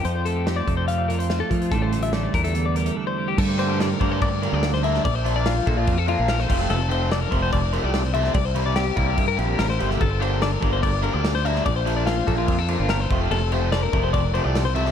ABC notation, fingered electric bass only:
X:1
M:4/4
L:1/16
Q:1/4=145
K:Gdor
V:1 name="Fingered electric bass" clef=bass
F,,6 F,,8 F,2 | A,,,6 E,,6 z4 | G,,6 G,,4- G,, D,,4- D,, | B,,,6 B,,,2 F,,3 B,,,3 F,,,2 |
F,,,6 F,,,4- F,,, C,,4- C,, | C,,6 C,,2 G,,2 B,,,2 A,,,2 G,,,2 | G,,,6 G,,,4- G,,, D,,4- D,, | B,,,6 B,,,2 F,,3 G,,,3 F,,,2 |
F,,,6 F,,,4- F,,, C,,4- C,, |]